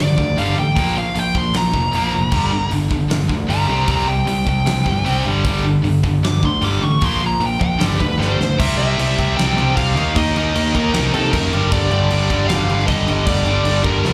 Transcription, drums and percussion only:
0.18 kick medium
0.38 open hi-hat medium
0.77 kick loud
0.77 open hi-hat medium
0.87 snare soft
1.16 open hi-hat medium
1.35 kick medium
1.54 snare loud
1.54 open hi-hat medium
1.74 kick medium
1.93 open hi-hat medium
2.32 kick loud
2.32 crash loud
2.71 open hi-hat medium
2.91 kick medium
3.10 snare loud
3.10 open hi-hat medium
3.29 kick medium
3.50 open hi-hat medium
3.88 kick loud
3.88 open hi-hat medium
3.99 snare soft
4.27 open hi-hat medium
4.47 kick medium
4.66 snare loud
4.66 open hi-hat medium
4.86 kick medium
5.06 open hi-hat medium
5.45 kick loud
5.45 open hi-hat medium
5.57 snare soft
5.85 open hi-hat medium
6.04 kick medium
6.24 snare loud
6.24 open hi-hat medium
6.43 kick medium
6.62 open hi-hat medium
7.01 kick loud
7.01 open hi-hat medium
7.13 snare soft
7.41 open hi-hat medium
7.61 kick medium
7.80 snare loud
7.80 open hi-hat medium
8.00 kick medium
8.21 snare medium
8.41 snare medium
8.60 kick loud
8.60 crash loud
8.60 crash medium
8.80 crash medium
8.99 crash loud
9.19 kick medium
9.19 crash medium
9.39 snare loud
9.39 crash medium
9.58 crash medium
9.77 kick loud
9.77 crash loud
9.97 crash medium
10.16 kick loud
10.16 crash loud
10.36 crash medium
10.56 crash loud
10.75 kick medium
10.75 crash medium
10.94 snare loud
10.94 crash medium
11.14 crash medium
11.24 snare soft
11.33 kick medium
11.33 crash loud
11.53 crash medium
11.72 kick loud
11.72 crash medium
11.91 crash medium
12.10 crash medium
12.30 kick medium
12.30 crash medium
12.49 snare loud
12.49 crash loud
12.69 crash medium
12.79 snare soft
12.88 kick loud
12.88 crash medium
13.08 crash medium
13.27 kick loud
13.27 crash loud
13.46 crash medium
13.65 crash loud
13.84 kick loud
13.84 crash medium
14.05 snare medium

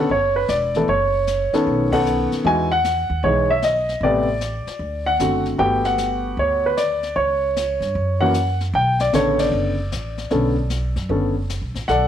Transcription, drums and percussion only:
0.09 brush sweep soft
0.48 snare medium
0.48 hi-hat pedal soft
0.75 snare soft
0.88 brush sweep soft
1.27 snare medium
1.27 hi-hat pedal medium
1.53 snare soft
1.66 brush sweep soft
1.92 kick medium
1.92 ride medium
2.06 hi-hat pedal soft
2.32 snare soft
2.46 brush sweep soft
2.84 snare medium
2.84 hi-hat pedal soft
3.23 brush sweep soft
3.62 snare medium
3.62 hi-hat pedal soft
3.89 snare soft
4.03 brush sweep soft
4.41 snare soft
4.41 hi-hat pedal soft
4.67 snare soft
4.80 brush sweep soft
5.20 snare soft
5.20 hi-hat pedal medium
5.45 snare soft
5.59 brush sweep soft
5.85 snare soft
5.98 snare soft
5.98 hi-hat pedal soft
6.37 brush sweep soft
6.77 snare medium
6.77 hi-hat pedal soft
7.03 snare soft
7.17 brush sweep soft
7.57 snare medium
7.57 hi-hat pedal soft
7.82 snare soft
7.96 brush sweep soft
8.34 snare soft
8.34 hi-hat pedal medium
8.61 snare soft
8.75 brush sweep soft
9.00 snare soft
9.13 snare medium
9.13 hi-hat pedal soft
9.39 snare medium
9.39 ride medium
9.53 brush sweep soft
9.92 snare medium
9.92 hi-hat pedal medium
10.18 snare soft
10.30 brush sweep soft
10.30 snare soft
10.57 kick soft
10.70 snare soft
10.70 hi-hat pedal soft
10.96 snare soft
11.10 brush sweep soft
11.50 snare soft
11.50 hi-hat pedal medium
11.75 snare soft
11.89 brush sweep soft
11.89 snare soft

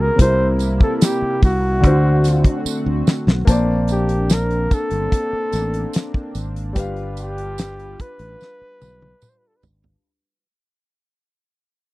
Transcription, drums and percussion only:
0.19 kick loud
0.19 closed hi-hat loud
0.19 tambourine medium
0.59 closed hi-hat medium
0.59 tambourine soft
0.81 kick loud
1.01 snare loud
1.01 closed hi-hat loud
1.01 tambourine medium
1.42 kick loud
1.42 open hi-hat soft
1.42 tambourine soft
1.84 kick medium
1.84 closed hi-hat medium
2.24 snare soft
2.24 closed hi-hat medium
2.24 tambourine medium
2.44 kick loud
2.44 closed hi-hat medium
2.66 tambourine medium
3.07 snare loud
3.07 tambourine medium
3.28 snare loud
3.47 kick loud
3.47 closed hi-hat loud
3.47 tambourine medium
3.88 closed hi-hat medium
3.88 tambourine soft
4.09 closed hi-hat medium
4.30 snare loud
4.30 closed hi-hat medium
4.30 tambourine medium
4.51 closed hi-hat soft
4.71 kick loud
4.71 closed hi-hat medium
4.71 tambourine soft
4.91 closed hi-hat medium
5.12 kick medium
5.12 closed hi-hat medium
5.12 tambourine soft
5.52 snare soft
5.52 closed hi-hat medium
5.52 tambourine soft
5.74 closed hi-hat medium
5.93 snare loud
5.93 closed hi-hat medium
5.93 tambourine medium
6.14 kick medium
6.35 closed hi-hat medium
6.35 tambourine soft
6.56 closed hi-hat medium
6.76 kick loud
6.76 closed hi-hat loud
6.76 tambourine soft
6.96 closed hi-hat soft
7.17 closed hi-hat medium
7.17 tambourine soft
7.38 closed hi-hat medium
7.58 snare loud
7.58 closed hi-hat loud
7.58 tambourine medium
7.79 closed hi-hat soft
8.00 kick medium
8.00 closed hi-hat medium
8.19 closed hi-hat medium
8.41 snare medium
8.41 tambourine soft
8.82 high tom medium
8.82 tambourine soft
9.02 high tom medium
9.22 mid tom medium
9.22 tambourine medium
9.63 floor tom loud
9.63 tambourine soft
9.84 floor tom medium

